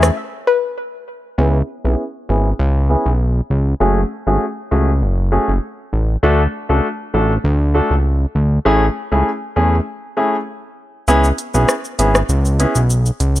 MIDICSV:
0, 0, Header, 1, 5, 480
1, 0, Start_track
1, 0, Tempo, 606061
1, 1095, Time_signature, 4, 2, 24, 8
1, 10613, End_track
2, 0, Start_track
2, 0, Title_t, "Synth pluck"
2, 0, Program_c, 0, 84
2, 375, Note_on_c, 0, 71, 86
2, 460, Note_off_c, 0, 71, 0
2, 10613, End_track
3, 0, Start_track
3, 0, Title_t, "Grand piano"
3, 0, Program_c, 1, 0
3, 1092, Note_on_c, 1, 59, 90
3, 1093, Note_on_c, 1, 61, 78
3, 1095, Note_on_c, 1, 64, 80
3, 1097, Note_on_c, 1, 68, 99
3, 1235, Note_off_c, 1, 59, 0
3, 1235, Note_off_c, 1, 61, 0
3, 1236, Note_off_c, 1, 64, 0
3, 1237, Note_off_c, 1, 68, 0
3, 1459, Note_on_c, 1, 59, 70
3, 1461, Note_on_c, 1, 61, 63
3, 1463, Note_on_c, 1, 64, 65
3, 1464, Note_on_c, 1, 68, 75
3, 1589, Note_off_c, 1, 59, 0
3, 1590, Note_off_c, 1, 61, 0
3, 1591, Note_off_c, 1, 64, 0
3, 1592, Note_off_c, 1, 68, 0
3, 1813, Note_on_c, 1, 59, 68
3, 1814, Note_on_c, 1, 61, 63
3, 1816, Note_on_c, 1, 64, 60
3, 1817, Note_on_c, 1, 68, 80
3, 1955, Note_off_c, 1, 59, 0
3, 1956, Note_off_c, 1, 61, 0
3, 1957, Note_off_c, 1, 64, 0
3, 1957, Note_off_c, 1, 68, 0
3, 2292, Note_on_c, 1, 59, 71
3, 2294, Note_on_c, 1, 61, 67
3, 2296, Note_on_c, 1, 64, 61
3, 2297, Note_on_c, 1, 68, 79
3, 2435, Note_off_c, 1, 59, 0
3, 2435, Note_off_c, 1, 61, 0
3, 2437, Note_off_c, 1, 64, 0
3, 2437, Note_off_c, 1, 68, 0
3, 3011, Note_on_c, 1, 57, 90
3, 3013, Note_on_c, 1, 61, 81
3, 3015, Note_on_c, 1, 66, 83
3, 3016, Note_on_c, 1, 68, 102
3, 3154, Note_off_c, 1, 57, 0
3, 3155, Note_off_c, 1, 61, 0
3, 3156, Note_off_c, 1, 66, 0
3, 3157, Note_off_c, 1, 68, 0
3, 3379, Note_on_c, 1, 57, 71
3, 3381, Note_on_c, 1, 61, 63
3, 3383, Note_on_c, 1, 66, 67
3, 3384, Note_on_c, 1, 68, 80
3, 3509, Note_off_c, 1, 57, 0
3, 3510, Note_off_c, 1, 61, 0
3, 3511, Note_off_c, 1, 66, 0
3, 3512, Note_off_c, 1, 68, 0
3, 3732, Note_on_c, 1, 57, 73
3, 3733, Note_on_c, 1, 61, 65
3, 3735, Note_on_c, 1, 66, 62
3, 3737, Note_on_c, 1, 68, 79
3, 3875, Note_off_c, 1, 57, 0
3, 3875, Note_off_c, 1, 61, 0
3, 3876, Note_off_c, 1, 66, 0
3, 3877, Note_off_c, 1, 68, 0
3, 4211, Note_on_c, 1, 57, 68
3, 4213, Note_on_c, 1, 61, 67
3, 4214, Note_on_c, 1, 66, 62
3, 4216, Note_on_c, 1, 68, 75
3, 4354, Note_off_c, 1, 57, 0
3, 4355, Note_off_c, 1, 61, 0
3, 4356, Note_off_c, 1, 66, 0
3, 4357, Note_off_c, 1, 68, 0
3, 4933, Note_on_c, 1, 57, 95
3, 4934, Note_on_c, 1, 62, 84
3, 4936, Note_on_c, 1, 66, 83
3, 4938, Note_on_c, 1, 69, 98
3, 5075, Note_off_c, 1, 57, 0
3, 5076, Note_off_c, 1, 62, 0
3, 5077, Note_off_c, 1, 66, 0
3, 5078, Note_off_c, 1, 69, 0
3, 5300, Note_on_c, 1, 57, 72
3, 5301, Note_on_c, 1, 62, 68
3, 5303, Note_on_c, 1, 66, 66
3, 5304, Note_on_c, 1, 69, 80
3, 5430, Note_off_c, 1, 57, 0
3, 5430, Note_off_c, 1, 62, 0
3, 5431, Note_off_c, 1, 66, 0
3, 5432, Note_off_c, 1, 69, 0
3, 5652, Note_on_c, 1, 57, 67
3, 5654, Note_on_c, 1, 62, 63
3, 5656, Note_on_c, 1, 66, 64
3, 5657, Note_on_c, 1, 69, 78
3, 5795, Note_off_c, 1, 57, 0
3, 5796, Note_off_c, 1, 62, 0
3, 5797, Note_off_c, 1, 66, 0
3, 5797, Note_off_c, 1, 69, 0
3, 6132, Note_on_c, 1, 57, 70
3, 6134, Note_on_c, 1, 62, 67
3, 6136, Note_on_c, 1, 66, 65
3, 6137, Note_on_c, 1, 69, 78
3, 6275, Note_off_c, 1, 57, 0
3, 6276, Note_off_c, 1, 62, 0
3, 6277, Note_off_c, 1, 66, 0
3, 6277, Note_off_c, 1, 69, 0
3, 6852, Note_on_c, 1, 57, 88
3, 6854, Note_on_c, 1, 61, 85
3, 6855, Note_on_c, 1, 64, 84
3, 6857, Note_on_c, 1, 68, 101
3, 6995, Note_off_c, 1, 57, 0
3, 6996, Note_off_c, 1, 61, 0
3, 6996, Note_off_c, 1, 64, 0
3, 6997, Note_off_c, 1, 68, 0
3, 7219, Note_on_c, 1, 57, 73
3, 7221, Note_on_c, 1, 61, 65
3, 7223, Note_on_c, 1, 64, 67
3, 7224, Note_on_c, 1, 68, 80
3, 7349, Note_off_c, 1, 57, 0
3, 7350, Note_off_c, 1, 61, 0
3, 7351, Note_off_c, 1, 64, 0
3, 7352, Note_off_c, 1, 68, 0
3, 7572, Note_on_c, 1, 57, 72
3, 7573, Note_on_c, 1, 61, 65
3, 7575, Note_on_c, 1, 64, 66
3, 7576, Note_on_c, 1, 68, 79
3, 7715, Note_off_c, 1, 57, 0
3, 7715, Note_off_c, 1, 61, 0
3, 7716, Note_off_c, 1, 64, 0
3, 7717, Note_off_c, 1, 68, 0
3, 8052, Note_on_c, 1, 57, 74
3, 8054, Note_on_c, 1, 61, 65
3, 8055, Note_on_c, 1, 64, 66
3, 8057, Note_on_c, 1, 68, 76
3, 8195, Note_off_c, 1, 57, 0
3, 8196, Note_off_c, 1, 61, 0
3, 8196, Note_off_c, 1, 64, 0
3, 8197, Note_off_c, 1, 68, 0
3, 8774, Note_on_c, 1, 59, 93
3, 8775, Note_on_c, 1, 61, 88
3, 8776, Note_on_c, 1, 64, 88
3, 8778, Note_on_c, 1, 68, 102
3, 8916, Note_off_c, 1, 59, 0
3, 8916, Note_off_c, 1, 61, 0
3, 8917, Note_off_c, 1, 64, 0
3, 8918, Note_off_c, 1, 68, 0
3, 9140, Note_on_c, 1, 59, 78
3, 9142, Note_on_c, 1, 61, 67
3, 9143, Note_on_c, 1, 64, 65
3, 9145, Note_on_c, 1, 68, 83
3, 9270, Note_off_c, 1, 59, 0
3, 9271, Note_off_c, 1, 61, 0
3, 9271, Note_off_c, 1, 64, 0
3, 9272, Note_off_c, 1, 68, 0
3, 9493, Note_on_c, 1, 59, 74
3, 9494, Note_on_c, 1, 61, 66
3, 9496, Note_on_c, 1, 64, 70
3, 9497, Note_on_c, 1, 68, 79
3, 9635, Note_off_c, 1, 59, 0
3, 9636, Note_off_c, 1, 61, 0
3, 9636, Note_off_c, 1, 64, 0
3, 9637, Note_off_c, 1, 68, 0
3, 9973, Note_on_c, 1, 59, 71
3, 9975, Note_on_c, 1, 61, 67
3, 9976, Note_on_c, 1, 64, 68
3, 9978, Note_on_c, 1, 68, 81
3, 10115, Note_off_c, 1, 59, 0
3, 10116, Note_off_c, 1, 61, 0
3, 10117, Note_off_c, 1, 64, 0
3, 10118, Note_off_c, 1, 68, 0
3, 10613, End_track
4, 0, Start_track
4, 0, Title_t, "Analog synth bass"
4, 0, Program_c, 2, 38
4, 0, Note_on_c, 2, 40, 88
4, 86, Note_off_c, 2, 40, 0
4, 1095, Note_on_c, 2, 37, 107
4, 1286, Note_off_c, 2, 37, 0
4, 1462, Note_on_c, 2, 35, 89
4, 1552, Note_off_c, 2, 35, 0
4, 1815, Note_on_c, 2, 32, 89
4, 2006, Note_off_c, 2, 32, 0
4, 2054, Note_on_c, 2, 37, 112
4, 2347, Note_off_c, 2, 37, 0
4, 2421, Note_on_c, 2, 35, 88
4, 2703, Note_off_c, 2, 35, 0
4, 2775, Note_on_c, 2, 37, 82
4, 2966, Note_off_c, 2, 37, 0
4, 3014, Note_on_c, 2, 30, 104
4, 3205, Note_off_c, 2, 30, 0
4, 3381, Note_on_c, 2, 32, 84
4, 3471, Note_off_c, 2, 32, 0
4, 3734, Note_on_c, 2, 37, 85
4, 3975, Note_on_c, 2, 30, 103
4, 3987, Note_off_c, 2, 37, 0
4, 4267, Note_off_c, 2, 30, 0
4, 4342, Note_on_c, 2, 30, 90
4, 4432, Note_off_c, 2, 30, 0
4, 4695, Note_on_c, 2, 33, 82
4, 4886, Note_off_c, 2, 33, 0
4, 4935, Note_on_c, 2, 38, 111
4, 5126, Note_off_c, 2, 38, 0
4, 5303, Note_on_c, 2, 37, 79
4, 5392, Note_off_c, 2, 37, 0
4, 5654, Note_on_c, 2, 33, 90
4, 5846, Note_off_c, 2, 33, 0
4, 5895, Note_on_c, 2, 38, 111
4, 6187, Note_off_c, 2, 38, 0
4, 6261, Note_on_c, 2, 37, 89
4, 6543, Note_off_c, 2, 37, 0
4, 6614, Note_on_c, 2, 38, 92
4, 6806, Note_off_c, 2, 38, 0
4, 6854, Note_on_c, 2, 33, 108
4, 7046, Note_off_c, 2, 33, 0
4, 7222, Note_on_c, 2, 37, 85
4, 7312, Note_off_c, 2, 37, 0
4, 7574, Note_on_c, 2, 40, 84
4, 7766, Note_off_c, 2, 40, 0
4, 8774, Note_on_c, 2, 37, 108
4, 8966, Note_off_c, 2, 37, 0
4, 9142, Note_on_c, 2, 35, 91
4, 9232, Note_off_c, 2, 35, 0
4, 9495, Note_on_c, 2, 32, 90
4, 9686, Note_off_c, 2, 32, 0
4, 9735, Note_on_c, 2, 37, 118
4, 10027, Note_off_c, 2, 37, 0
4, 10102, Note_on_c, 2, 35, 92
4, 10383, Note_off_c, 2, 35, 0
4, 10455, Note_on_c, 2, 37, 89
4, 10613, Note_off_c, 2, 37, 0
4, 10613, End_track
5, 0, Start_track
5, 0, Title_t, "Drums"
5, 23, Note_on_c, 9, 37, 96
5, 23, Note_on_c, 9, 82, 65
5, 102, Note_off_c, 9, 37, 0
5, 102, Note_off_c, 9, 82, 0
5, 8775, Note_on_c, 9, 82, 79
5, 8854, Note_off_c, 9, 82, 0
5, 8902, Note_on_c, 9, 82, 48
5, 8981, Note_off_c, 9, 82, 0
5, 9016, Note_on_c, 9, 42, 54
5, 9016, Note_on_c, 9, 82, 41
5, 9095, Note_off_c, 9, 42, 0
5, 9095, Note_off_c, 9, 82, 0
5, 9141, Note_on_c, 9, 82, 80
5, 9221, Note_off_c, 9, 82, 0
5, 9255, Note_on_c, 9, 37, 90
5, 9256, Note_on_c, 9, 82, 73
5, 9334, Note_off_c, 9, 37, 0
5, 9336, Note_off_c, 9, 82, 0
5, 9382, Note_on_c, 9, 82, 47
5, 9461, Note_off_c, 9, 82, 0
5, 9496, Note_on_c, 9, 42, 79
5, 9496, Note_on_c, 9, 82, 60
5, 9575, Note_off_c, 9, 42, 0
5, 9575, Note_off_c, 9, 82, 0
5, 9623, Note_on_c, 9, 37, 91
5, 9623, Note_on_c, 9, 82, 65
5, 9702, Note_off_c, 9, 37, 0
5, 9703, Note_off_c, 9, 82, 0
5, 9735, Note_on_c, 9, 82, 72
5, 9814, Note_off_c, 9, 82, 0
5, 9862, Note_on_c, 9, 82, 52
5, 9941, Note_off_c, 9, 82, 0
5, 9977, Note_on_c, 9, 42, 72
5, 9977, Note_on_c, 9, 82, 52
5, 10056, Note_off_c, 9, 42, 0
5, 10056, Note_off_c, 9, 82, 0
5, 10100, Note_on_c, 9, 82, 84
5, 10180, Note_off_c, 9, 82, 0
5, 10217, Note_on_c, 9, 82, 83
5, 10296, Note_off_c, 9, 82, 0
5, 10342, Note_on_c, 9, 82, 57
5, 10421, Note_off_c, 9, 82, 0
5, 10456, Note_on_c, 9, 42, 63
5, 10456, Note_on_c, 9, 82, 47
5, 10535, Note_off_c, 9, 42, 0
5, 10535, Note_off_c, 9, 82, 0
5, 10581, Note_on_c, 9, 82, 72
5, 10613, Note_off_c, 9, 82, 0
5, 10613, End_track
0, 0, End_of_file